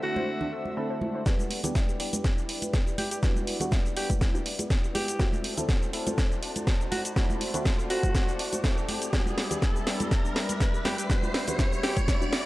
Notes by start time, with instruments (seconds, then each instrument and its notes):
Already playing: analog synth pad A3 D4 F#4 C5 E5
0.03 synth stab D3 A3 C4 E4 F#4, alto saxophone F#4
0.16 synth pluck C5, high conga
0.41 synth pluck D4, low conga
0.52 synth pluck A4
0.65 high conga
0.77 synth stab D3 A3 C4 E4 A4, synth pluck A4
0.90 synth pluck C5
1.01 high conga
1.15 synth pluck C5
1.26 fm bass E2, synth stab G3 B3 D4 F#4, analog synth pad E4 B4 D5, synth pluck D5, kick, snare, closed hi-hat, riser, cabasa
1.39 high conga, cabasa
1.51 open hi-hat
1.64 fm bass E2, synth stab G3 B3 D4 G4, closed hi-hat, low conga, cabasa
1.75 synth pluck E5, kick, snare, closed hi-hat, high conga, cabasa
1.89 synth pluck G4, cabasa
2.00 synth stab G3 B3 D4 G4, open hi-hat
2.13 fm bass E1, synth pluck B4, closed hi-hat, high conga, cabasa
2.24 kick, snare, closed hi-hat, cabasa
2.38 synth pluck D4, cabasa
2.49 synth pluck D5, open hi-hat
2.62 closed hi-hat, high conga, cabasa
2.74 fm bass E2, synth pluck B4, kick, snare, closed hi-hat, cabasa
2.87 synth pluck G4, cabasa
2.98 alto saxophone G4, open hi-hat, high conga
3.11 alto saxophone G4, closed hi-hat, cabasa
3.23 fm bass E2, synth stab G3 B3 D4 F#4, synth pluck D5, kick, snare, closed hi-hat, cabasa
3.36 high conga, cabasa
3.47 open hi-hat
3.60 fm bass E2, synth stab G3 B3 D4 F#4, closed hi-hat, low conga, cabasa
3.71 synth pluck E5, kick, snare, closed hi-hat, high conga, cabasa
3.85 synth pluck G4, cabasa
3.96 synth stab G3 B3 D4 F#4, alto saxophone G4, open hi-hat
4.10 fm bass E1, synth pluck B4, kick, closed hi-hat, high conga, cabasa
4.21 kick, snare, closed hi-hat, cabasa
4.34 fm bass D2, synth pluck D4, cabasa
4.46 synth pluck D5, open hi-hat
4.59 fm bass E2, closed hi-hat, high conga, cabasa
4.70 synth pluck B4, kick, snare, closed hi-hat, cabasa
4.84 synth pluck G4, cabasa
4.95 fm bass E2, alto saxophone G4, open hi-hat, high conga
5.08 closed hi-hat, cabasa
5.19 fm bass D2, synth stab A3 C4 E4 F#4, analog synth pad F#4 C5 D5 A5, synth pluck D5, kick, snare, closed hi-hat, cabasa
5.33 high conga, cabasa
5.44 open hi-hat
5.57 fm bass D2, synth stab A3 C4 E4 A4, closed hi-hat, low conga, cabasa
5.69 synth pluck F#5, kick, snare, closed hi-hat, high conga, cabasa
5.82 synth pluck A4, cabasa
5.93 synth stab A3 C4 E4 A4, open hi-hat
6.07 fm bass D1, synth pluck C5, closed hi-hat, high conga, cabasa
6.18 kick, snare, closed hi-hat, cabasa
6.31 synth pluck D4, cabasa
6.42 synth pluck D5, open hi-hat
6.56 closed hi-hat, high conga, cabasa
6.67 fm bass D2, synth pluck C5, kick, snare, closed hi-hat, cabasa
6.80 synth pluck A4, cabasa
6.92 alto saxophone F#4, open hi-hat, high conga
7.05 alto saxophone F#4, closed hi-hat, cabasa
7.16 fm bass D2, synth stab A3 C4 E4 F#4, synth pluck D5, kick, snare, closed hi-hat, cabasa
7.30 high conga, cabasa
7.41 open hi-hat
7.54 fm bass D2, synth stab A3 C4 E4 F#4, closed hi-hat, low conga, cabasa
7.65 synth pluck F#5, kick, snare, closed hi-hat, high conga, cabasa
7.79 synth pluck A4, cabasa
7.90 synth stab A3 C4 E4 F#4, alto saxophone F#4, open hi-hat
8.03 fm bass D1, synth pluck C5, kick, closed hi-hat, high conga, cabasa
8.15 kick, snare, closed hi-hat, cabasa
8.28 synth pluck D4, cabasa
8.39 synth pluck D5, open hi-hat
8.52 fm bass D2, closed hi-hat, high conga, cabasa
8.64 synth stab A3 C4 E4 A4, synth pluck C5, kick, snare, closed hi-hat, cabasa
8.77 synth pluck A4, cabasa
8.89 open hi-hat, high conga
9.02 closed hi-hat, cabasa
9.13 fm bass E2, synth stab G3 B3 D4 F#4, analog synth pad G3 E5 B5, synth pluck D5, kick, snare, closed hi-hat, cabasa
9.26 high conga, cabasa
9.38 snare, open hi-hat
9.51 fm bass E2, synth stab G3 B3 D4 G4, closed hi-hat, low conga, cabasa
9.62 synth pluck E5, kick, snare, closed hi-hat, high conga, cabasa
9.75 synth pluck G4, cabasa
9.87 synth stab G3 B3 D4 G4, snare, open hi-hat
10.00 fm bass E1, synth pluck B4, closed hi-hat, high conga, cabasa
10.11 kick, snare, closed hi-hat, cabasa
10.25 synth pluck D4, cabasa
10.36 synth pluck D5, snare, open hi-hat
10.49 closed hi-hat, high conga, cabasa
10.60 fm bass E2, synth pluck B4, kick, snare, closed hi-hat, cabasa
10.74 synth pluck G4, cabasa
10.85 alto saxophone G4, snare, open hi-hat, high conga
10.98 alto saxophone G4, closed hi-hat, cabasa
11.10 fm bass E2, synth stab G3 B3 D4 F#4, synth pluck D5, kick, snare, closed hi-hat, cabasa
11.23 high conga, cabasa
11.34 snare, open hi-hat
11.47 fm bass E2, synth stab G3 B3 D4 F#4, closed hi-hat, low conga, cabasa
11.59 synth pluck E5, kick, snare, closed hi-hat, high conga, cabasa
11.72 synth pluck G4, cabasa
11.83 synth stab G3 B3 D4 F#4, alto saxophone G4, snare, open hi-hat
11.97 fm bass E1, synth pluck B4, kick, closed hi-hat, high conga, cabasa
12.08 kick, snare, closed hi-hat, cabasa
12.21 fm bass D2, synth pluck D4, cabasa
12.33 synth pluck D5, snare, open hi-hat